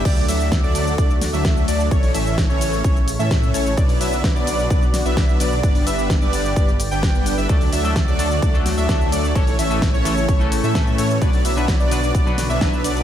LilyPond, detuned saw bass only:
\new Staff \with { instrumentName = "Detuned saw bass" } { \clef bass \time 4/4 \key d \major \tempo 4 = 129 d,8 d,8. d,8. d,8. d,8. d,8 | a,,8 a,,8. a,,8. a,,8. a,8. a,,8 | b,,8 b,,8. b,,8. b,,8. b,,8. b,,8 | g,,8 g,,8. g,,8. g,,8. g,,4 g,,16 |
d,8 d,8. d,8. d,8. d,8. d,8 | a,,8 a,,8. a,,8. a,,8. a,8. a,8 | b,,8 b,,8. b,,8. b,,8. b,,8. b,,8 | }